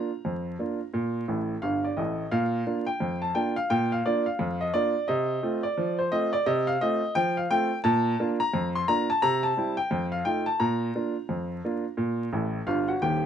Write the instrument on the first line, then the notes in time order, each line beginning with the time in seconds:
upright piano
Already playing: A#5
0.25 F2
0.59 A#3 D4 F4
0.93 A#2
1.28 A1 A2
1.62 G1 G2 F5
1.85 D5
1.97 A1 A2 D#5
2.31 A#2 F5
2.67 A#3 D4 F4
2.86 G5
3.00 F2
3.22 A5
3.35 A#3 D4 F4 G5
3.56 F5
3.70 A#2 G5
3.92 F5
4.06 A#3 D4 F4 D5
4.26 F5
4.39 F2
4.61 D#5
4.74 A#3 D4 F4 D5
5.08 C3 D#5
5.43 A3 C4 F4
5.63 D5
5.78 F3
5.99 C5
6.12 A3 C4 F4 D#5
6.33 D5
6.46 C3 D#5
6.67 F5
6.81 A3 C4 F4 D#5
7.15 F3 G5
7.37 F5
7.51 A3 C4 F4 G5
7.84 A#2 A5
8.20 A#3 D4 F4
8.40 A#5
8.53 F2
8.75 C6
8.88 A#3 D4 F4 A#5
9.10 A5
9.22 C3 A#5
9.43 A5
9.57 G3 C4 E4
9.77 G5
9.91 F2
10.12 F5
10.25 A3 D#4 F4 G5
10.46 A5
10.60 A#2 A#5
10.95 A#3 D4 F4
11.29 F2
11.64 A#3 D4 F4
11.97 A#2
12.33 A1 A2
12.67 G1 G2 F4 F5
12.88 F#4 F#5
13.02 D#1 D#2 G4 G5